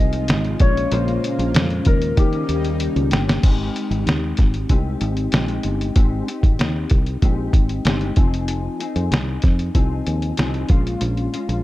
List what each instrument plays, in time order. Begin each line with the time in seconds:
Already playing: fingered electric bass C2, analog synth pad C3 G#3 D#4 F4, clean electric guitar F3 C4 D#4 G#4, harp G#4 A#4 D#5
0.13 closed hi-hat
0.28 fingered electric bass G#1, snare, closed hi-hat
0.45 closed hi-hat
0.60 fingered electric bass A#1, analog synth pad C#3 A#3, clean electric guitar G#3 C#4 F4, harp C#5, kick, closed hi-hat
0.77 closed hi-hat
0.91 fingered electric bass A#1, clean electric guitar A#2 G#3 C#4 F4, harp C5, closed hi-hat
1.08 closed hi-hat
1.24 closed hi-hat
1.39 fingered electric bass A#1, closed hi-hat
1.54 fingered electric bass F2, snare, closed hi-hat
1.70 closed hi-hat
1.85 fingered electric bass D#2, harp A#4, kick, closed hi-hat
2.02 closed hi-hat
2.17 analog synth pad C#3 G3 A#3 D#4, clean electric guitar D#3 A#3 C#4 G4, fingered electric bass D#3, harp G4, kick, closed hi-hat
2.33 closed hi-hat
2.49 fingered electric bass D#2, closed hi-hat
2.65 closed hi-hat
2.80 closed hi-hat
2.96 fingered electric bass C#2, closed hi-hat
3.11 fingered electric bass G1, clean electric guitar A#3 C#4 G4, snare, closed hi-hat
3.29 snare, closed hi-hat
3.43 fingered electric bass G#1, clean electric guitar G#3 C4 D#4 G4, kick, closed hi-hat, crash
3.76 closed hi-hat
3.91 fingered electric bass G#1, closed hi-hat
4.06 fingered electric bass D#2, snare, closed hi-hat
4.37 fingered electric bass G#1, kick, snare, closed hi-hat
4.54 closed hi-hat
4.69 fingered electric bass C2, clean electric guitar G#3 C4 D#4 G4, kick, closed hi-hat
5.01 fingered electric bass G#1, closed hi-hat
5.17 closed hi-hat
5.32 fingered electric bass A#1, clean electric guitar G#3 C4 D#4 G4, snare, closed hi-hat
5.48 closed hi-hat
5.63 fingered electric bass G1, closed hi-hat
5.81 closed hi-hat
5.96 fingered electric bass G#1, clean electric guitar G#3 C4 D#4 G4, kick, closed hi-hat
6.27 clean electric guitar C4 D#4 G4, closed hi-hat
6.43 fingered electric bass G#1, kick, closed hi-hat
6.59 fingered electric bass D#2, snare, closed hi-hat
6.90 fingered electric bass C2, kick, closed hi-hat
7.06 closed hi-hat
7.22 fingered electric bass A#1, clean electric guitar G#3 C4 D#4 G4, kick, closed hi-hat
7.53 fingered electric bass G#1, kick, closed hi-hat
7.69 closed hi-hat
7.85 fingered electric bass G1, clean electric guitar G#3 C4 D#4 G4, snare, closed hi-hat
8.01 closed hi-hat
8.16 fingered electric bass F1, clean electric guitar F3 C4 D#4 G#4, kick, closed hi-hat
8.34 closed hi-hat
8.48 closed hi-hat
8.80 clean electric guitar C4 D#4 G#4, closed hi-hat
8.96 fingered electric bass F2, closed hi-hat
9.11 fingered electric bass C2, snare, closed hi-hat
9.42 fingered electric bass F2, kick, snare, closed hi-hat
9.59 closed hi-hat
9.74 fingered electric bass C2, clean electric guitar F3 C4 D#4 G#4, kick, closed hi-hat
10.07 fingered electric bass D#2, closed hi-hat
10.22 closed hi-hat
10.37 fingered electric bass C2, clean electric guitar F3 C4 D#4 G#4, snare, closed hi-hat
10.54 closed hi-hat
10.69 fingered electric bass A#1, clean electric guitar A#2 G#3 C#4 F4, kick, closed hi-hat
10.87 closed hi-hat
11.01 fingered electric bass A#1, closed hi-hat
11.17 closed hi-hat
11.33 clean electric guitar G#3 C#4 F4, closed hi-hat
11.49 fingered electric bass A#1, closed hi-hat